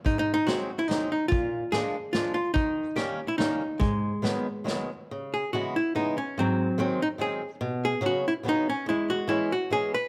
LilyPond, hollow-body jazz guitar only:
\new Staff \with { instrumentName = "Hollow-body jazz guitar" } { \time 3/4 \key gis \minor \tempo 4 = 143 << { \tuplet 3/2 { dis'8 dis'8 dis'8 } fis'8. e'16 dis'8 dis'8 | eis'4 gis'4 eis'8 eis'8 | dis'4 g'8. e'16 dis'4 | gis2~ gis8 r8 |
\key cis \minor r8 gis'8 fis'8 e'8 dis'8 cis'8 | bis4. dis'8 gis'8. r16 | r8 gis'8 fis'8 e'8 dis'8 cis'8 | e'8 fis'8 e'8 fis'8 gis'8 b'8 | } \\ { r2. | r2. | r2. | r2. |
r2. | fis4. r4. | r2. | gis4. r4. | } >> }